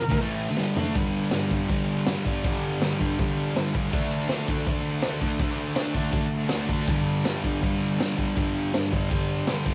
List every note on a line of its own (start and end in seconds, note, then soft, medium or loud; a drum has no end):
0.00 0.20 A#4 loud
0.00 muted distorted electric guitar stroke medium
0.00 shaker loud
0.08 0.19 D3 medium
0.08 0.20 A3 loud
0.08 kick loud
0.13 shaker soft
0.19 0.48 A2 medium
0.19 0.49 E3 loud
0.19 0.49 A3 loud
0.19 crash medium
0.23 shaker medium
0.40 shaker loud
0.49 0.56 D3 medium
0.49 0.58 A3 loud
0.49 shaker soft
0.57 0.76 G2 medium
0.57 0.74 D3 loud
0.57 0.77 G3 loud
0.57 snare medium
0.57 shaker medium
0.75 0.94 D3 loud
0.75 0.96 A3 loud
0.75 0.96 D4 loud
0.75 floor tom loud
0.75 shaker loud
0.95 1.31 G2 loud
0.95 1.32 D3 loud
0.95 1.33 G3 loud
0.95 kick loud
0.95 crash medium
0.95 shaker loud
1.13 crash medium
1.13 shaker medium
1.31 1.52 G2 medium
1.31 1.51 D3 medium
1.31 1.54 G3 loud
1.31 snare loud
1.31 crash medium
1.31 shaker loud
1.51 1.68 G2 medium
1.51 1.69 D3 medium
1.51 1.70 G3 loud
1.51 kick medium
1.51 crash medium
1.51 shaker medium
1.68 2.05 G2 loud
1.68 2.08 D3 loud
1.68 2.09 G3 loud
1.68 kick loud
1.68 crash medium
1.68 shaker medium
1.88 crash medium
1.88 shaker medium
2.06 2.23 G2 medium
2.06 2.25 D3 medium
2.06 2.25 G3 loud
2.06 snare loud
2.06 crash medium
2.06 shaker loud
2.25 2.44 G2 medium
2.25 2.45 D3 loud
2.25 2.45 G3 loud
2.25 kick medium
2.25 crash medium
2.25 shaker medium
2.44 2.79 G2 medium
2.44 2.80 D3 loud
2.44 2.82 G3 loud
2.44 kick loud
2.44 crash medium
2.44 shaker loud
2.62 crash medium
2.62 shaker medium
2.81 2.98 G2 medium
2.81 2.99 D3 loud
2.81 3.00 G3 medium
2.81 snare loud
2.81 crash medium
2.81 shaker medium
2.99 3.18 G2 medium
2.99 3.18 D3 medium
2.99 3.19 G3 loud
2.99 kick medium
2.99 crash medium
2.99 shaker medium
3.19 3.55 G2 medium
3.19 3.55 D3 loud
3.19 3.55 G3 loud
3.19 kick loud
3.19 crash medium
3.19 shaker loud
3.37 crash medium
3.37 shaker medium
3.56 3.73 G2 medium
3.56 3.74 D3 loud
3.56 3.75 G3 medium
3.56 snare loud
3.56 crash medium
3.56 shaker loud
3.74 3.92 G2 medium
3.74 3.91 D3 medium
3.74 3.92 G3 loud
3.74 kick medium
3.74 crash medium
3.74 shaker medium
3.92 4.28 D3 loud
3.92 4.30 A3 loud
3.92 4.30 D4 loud
3.92 kick loud
3.92 crash medium
3.92 shaker loud
4.11 crash medium
4.11 shaker medium
4.29 4.49 D3 medium
4.29 4.50 A3 medium
4.29 4.50 D4 loud
4.29 snare loud
4.29 crash medium
4.29 shaker loud
4.48 4.66 D3 medium
4.48 4.66 A3 loud
4.48 4.69 D4 loud
4.48 kick medium
4.48 crash medium
4.48 shaker medium
4.66 5.02 D3 medium
4.66 5.03 A3 loud
4.66 5.05 D4 loud
4.66 kick loud
4.66 crash medium
4.66 shaker loud
4.85 crash medium
4.85 shaker medium
5.02 5.20 D3 medium
5.02 5.21 A3 medium
5.02 5.23 D4 medium
5.02 snare loud
5.02 crash medium
5.02 shaker loud
5.21 5.40 D3 medium
5.21 5.41 A3 loud
5.21 5.43 D4 medium
5.21 kick medium
5.21 crash medium
5.21 shaker medium
5.38 5.75 D3 loud
5.38 kick loud
5.38 crash medium
5.38 shaker loud
5.42 5.76 A3 loud
5.42 5.79 D4 loud
5.58 crash medium
5.58 shaker medium
5.76 5.95 D3 medium
5.76 5.95 A3 medium
5.76 5.97 D4 loud
5.76 snare loud
5.76 crash medium
5.76 shaker medium
5.94 6.11 D3 loud
5.94 6.12 A3 medium
5.94 6.13 D4 loud
5.94 kick medium
5.94 crash medium
5.94 shaker medium
6.12 6.49 D3 medium
6.12 6.51 A3 loud
6.12 6.52 D4 loud
6.12 kick loud
6.12 crash medium
6.12 shaker medium
6.31 crash medium
6.31 shaker medium
6.49 6.69 D3 medium
6.49 6.70 A3 medium
6.49 6.73 D4 medium
6.49 snare loud
6.49 crash medium
6.49 shaker medium
6.68 6.88 D3 medium
6.68 6.88 A3 loud
6.68 kick medium
6.68 crash medium
6.68 shaker medium
6.73 9.74 D4 loud
6.87 7.24 G2 loud
6.87 7.24 D3 loud
6.87 7.26 G3 loud
6.87 kick loud
6.87 crash loud
6.87 shaker loud
7.06 crash medium
7.06 shaker medium
7.25 7.44 G2 loud
7.25 7.45 D3 medium
7.25 7.46 G3 medium
7.25 snare loud
7.25 crash medium
7.25 shaker medium
7.44 7.62 G2 loud
7.44 7.62 D3 loud
7.44 7.64 G3 loud
7.44 kick medium
7.44 crash medium
7.44 shaker medium
7.63 7.99 G2 loud
7.63 8.00 D3 loud
7.63 8.00 G3 loud
7.63 kick loud
7.63 crash medium
7.63 shaker loud
7.82 crash medium
7.82 shaker medium
8.00 8.16 G2 medium
8.00 8.16 D3 medium
8.00 8.18 G3 medium
8.00 snare loud
8.00 crash medium
8.00 shaker loud
8.17 8.35 G2 medium
8.17 8.36 D3 medium
8.17 8.37 G3 medium
8.17 kick medium
8.17 crash medium
8.36 8.72 G2 medium
8.36 8.73 D3 loud
8.36 8.74 G3 loud
8.36 kick loud
8.36 crash medium
8.36 shaker loud
8.55 crash medium
8.55 shaker medium
8.74 8.91 G2 medium
8.74 8.92 D3 loud
8.74 8.94 G3 loud
8.74 snare loud
8.74 crash medium
8.74 shaker loud
8.93 9.09 G2 medium
8.93 9.11 D3 medium
8.93 9.11 G3 loud
8.93 kick medium
8.93 crash medium
8.93 shaker medium
9.10 9.47 G2 loud
9.10 9.48 D3 loud
9.10 9.49 G3 medium
9.10 kick loud
9.10 crash medium
9.10 shaker loud
9.28 crash medium
9.28 shaker medium
9.47 9.65 G2 medium
9.47 9.66 D3 medium
9.47 9.66 G3 loud
9.47 snare loud
9.47 crash medium
9.47 shaker loud
9.66 9.74 G2 medium
9.66 9.74 D3 loud
9.66 9.74 G3 loud
9.66 kick medium
9.66 crash medium
9.66 shaker medium